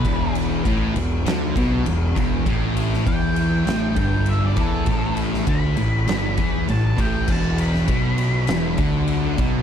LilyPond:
<<
  \new Staff \with { instrumentName = "Lead electric guitar" } { \time 4/4 \key e \minor \tempo 4 = 100 b'8 r2. r8 | r4 g''4. g''8 e''16 d''16 a'8~ | a'8 r8 b''2 a''16 a''16 g''8 | a''8 b''2. r8 | }
  \new Staff \with { instrumentName = "Distorted electric guitar" } { \clef bass \time 4/4 \key e \minor e,4 a,8 e,8 d8 b,8 e,8 e,8 | a,4 e4 a,8 g,4 e8 | a,4 d8 a,8 g,8 e8 a,8 a,8 | e,4 b,4 e,8 d4 b,8 | }
  \new Staff \with { instrumentName = "Distorted electric guitar" } { \clef bass \time 4/4 \key e \minor e,4 a,8 e,8 d8 b,8 e,8 e,8 | a,4 e4 a,8 g,4 e8 | a,4 d8 a,8 g,8 e8 a,8 a,8 | e,4 b,4 e,8 d4 b,8 | }
  \new Staff \with { instrumentName = "Distorted electric guitar" } { \clef bass \time 4/4 \key e \minor e,4 a,8 e,8 d8 b,8 e,8 e,8 | a,4 e4 a,8 g,4 e8 | a,4 d8 a,8 g,8 e8 a,8 a,8 | e,4 b,4 e,8 d4 b,8 | }
  \new Staff \with { instrumentName = "Fingered electric bass" } { \clef bass \time 4/4 \key e \minor e,,4 a,,8 e,,8 d,8 b,,8 e,,8 e,,8 | a,,4 e,4 a,,8 g,,4 e,8 | a,,4 d,8 a,,8 g,,8 e,8 a,,8 a,,8 | e,,4 b,,4 e,,8 d,4 b,,8 | }
  \new DrumStaff \with { instrumentName = "Drums" } \drummode { \time 4/4 <bd cymr>8 cymr8 <bd cymr>8 cymr8 <cymr sn>8 <bd cymr>8 cymr8 <bd cymr>8 | <bd cymr>8 cymr16 sn16 <bd cymr>8 cymr8 <cymr sn>8 <bd cymr>8 cymr8 <bd cymr>8 | <bd cymr>8 cymr16 sn16 <bd cymr>8 cymr8 <cymr sn>8 <bd cymr>8 cymr8 <bd cymr>8 | <cymc bd>8 cymr16 sn16 <bd cymr>8 cymr8 <cymr sn>8 <bd cymr>8 cymr8 <bd cymr>8 | }
>>